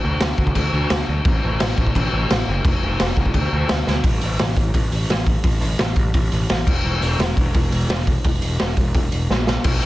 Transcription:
0.04 0.15 D2 medium
0.20 0.32 D2 loud
0.20 snare loud
0.20 crash medium
0.38 0.50 D2 medium
0.38 kick medium
0.47 kick medium
0.55 0.67 D2 medium
0.55 kick medium
0.55 crash medium
0.73 0.84 D2 medium
0.90 1.02 D2 loud
0.90 snare loud
0.90 crash medium
1.08 1.20 D2 medium
1.25 1.37 A1 loud
1.25 kick loud
1.25 crash medium
1.44 1.55 A1 loud
1.60 1.72 A1 loud
1.60 snare loud
1.60 crash medium
1.78 1.90 A1 medium
1.78 kick medium
1.87 kick medium
1.95 2.07 A1 loud
1.95 kick medium
1.95 crash medium
2.13 2.24 A1 medium
2.30 2.42 A1 medium
2.30 snare loud
2.30 crash medium
2.48 2.59 F#1 loud
2.65 2.76 F1 loud
2.65 kick loud
2.65 crash medium
2.83 2.94 F1 medium
3.00 3.12 F1 loud
3.00 snare loud
3.00 crash medium
3.17 3.29 F1 medium
3.17 kick medium
3.26 kick medium
3.34 3.46 D2 medium
3.34 kick loud
3.34 crash medium
3.52 3.64 D2 medium
3.69 3.81 D2 medium
3.69 snare loud
3.69 crash medium
3.87 3.99 D2 medium
3.87 snare medium
4.04 4.18 A1 medium
4.04 kick loud
4.04 open hi-hat medium
4.21 4.36 A1 medium
4.21 open hi-hat medium
4.39 4.53 A1 medium
4.39 snare loud
4.39 open hi-hat medium
4.57 4.70 A1 medium
4.57 kick medium
4.57 open hi-hat medium
4.74 4.88 A1 medium
4.74 kick loud
4.74 open hi-hat medium
4.92 5.05 A1 medium
4.92 open hi-hat medium
5.09 5.36 A1 medium
5.09 snare loud
5.09 open hi-hat medium
5.26 kick medium
5.26 open hi-hat medium
5.44 5.58 A1 medium
5.44 kick loud
5.44 open hi-hat medium
5.60 5.74 A1 medium
5.60 open hi-hat medium
5.79 5.93 A1 loud
5.79 snare loud
5.79 open hi-hat medium
5.96 6.10 A1 medium
5.96 kick medium
5.96 open hi-hat medium
6.14 6.28 A1 medium
6.14 kick loud
6.14 open hi-hat medium
6.32 6.45 A1 medium
6.32 open hi-hat medium
6.50 6.63 A1 medium
6.50 snare loud
6.50 open hi-hat medium
6.67 6.81 E1 loud
6.67 kick loud
6.67 crash medium
6.84 6.98 E1 medium
7.01 7.15 E1 medium
7.01 open hi-hat medium
7.19 7.33 E1 loud
7.19 snare loud
7.19 open hi-hat medium
7.37 7.51 E1 medium
7.37 kick medium
7.37 open hi-hat medium
7.55 7.68 E1 medium
7.55 kick loud
7.55 open hi-hat medium
7.71 7.85 E1 medium
7.71 open hi-hat medium
7.89 8.16 E1 medium
7.89 snare loud
7.89 open hi-hat medium
8.07 kick medium
8.07 open hi-hat medium
8.24 8.38 E1 loud
8.24 kick loud
8.24 open hi-hat medium
8.42 8.56 E1 medium
8.42 open hi-hat medium
8.59 8.74 E1 medium
8.59 snare loud
8.59 open hi-hat medium
8.77 8.91 E1 medium
8.77 kick medium
8.77 open hi-hat medium
8.94 9.08 E1 medium
8.94 kick loud
8.94 open hi-hat medium
9.12 9.26 E1 medium
9.12 open hi-hat medium
9.30 9.57 A#1 medium
9.30 snare medium
9.47 snare medium
9.64 9.79 B1 medium
9.64 kick loud
9.64 open hi-hat medium
9.64 crash medium
9.82 open hi-hat medium

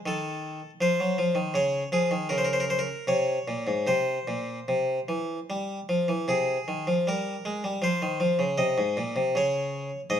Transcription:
0.06 0.59 D#3 medium
0.06 0.70 A4 medium
0.81 0.98 F3 medium
0.81 1.55 C5 medium
1.00 1.17 F#3 medium
1.18 1.36 F3 medium
1.35 1.53 D#3 medium
1.54 1.82 C#3 medium
1.54 1.87 C#5 medium
1.92 2.11 F3 medium
1.92 2.25 G#4 medium
2.11 2.30 D#3 medium
2.29 2.87 C#3 medium
2.29 2.38 A#4 medium
2.38 2.46 C5 medium
2.45 2.54 A#4 medium
2.53 2.62 C5 soft
2.60 2.70 A#4 medium
2.70 2.79 C5 medium
2.79 3.04 A#4 medium
3.07 3.37 C3 medium
3.07 3.89 C#5 medium
3.48 3.67 A#2 soft
3.67 3.87 G#2 soft
3.87 4.17 C3 soft
3.87 5.49 C5 medium
4.28 4.58 A#2 soft
4.68 4.98 C3 medium
5.08 5.38 E3 soft
5.50 5.78 G3 soft
5.89 6.08 F3 medium
6.08 6.27 E3 soft
6.28 6.56 C3 medium
6.28 6.94 G#4 medium
6.68 6.86 D#3 soft
6.87 7.05 F3 soft
7.07 7.34 G3 medium
7.07 7.72 A#4 medium
7.45 7.62 G#3 medium
7.64 7.81 G3 soft
7.82 8.00 F3 medium
7.82 8.48 C5 medium
8.02 8.19 D#3 medium
8.20 8.38 F3 medium
8.39 8.57 C#3 medium
8.58 8.76 C3 medium
8.58 9.23 D#5 medium
8.78 8.96 G#2 medium
8.97 9.15 A#2 medium
9.16 9.34 C3 medium
9.35 9.89 C#3 medium
9.35 10.00 C#5 medium
10.10 10.20 G#2 medium
10.10 10.20 D#5 medium

